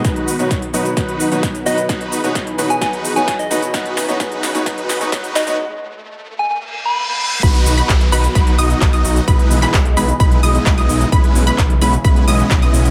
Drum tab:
CC |----------------|----------------|----------------|----------------|
HH |xxoxxxoxxxoxxxox|xxoxxxoxxxoxxxox|xxoxxxoxxxoxxxox|----------------|
SH |x-xxx-xxx-xxxxxx|x-xxx-xxx-xxxxxx|x-xxx-xxx-xxxxxx|----------------|
CP |----------------|----------------|----------------|----------------|
SD |o---o---o---o---|o---o---o---o---|o-o-o-o-o-o-o-o-|----------------|
BD |o---o---o---o---|o---o---o---o---|o---o---o---o---|----------------|

CC |x---------------|----------------|----------------|
HH |xxoxxxoxxxoxxxox|xxoxxxoxxxoxxxox|xxoxxxoxxxoxxxox|
SH |x-xxx-xxx-xxxxxx|x-xxx-xxx-xxxxxx|x-xxx-xxx-xxxxxx|
CP |----x-------x---|---xx-------x---|----x-------x---|
SD |----------------|----------------|----------------|
BD |o---o---o---o---|o---o---o---o---|o---o---o---o---|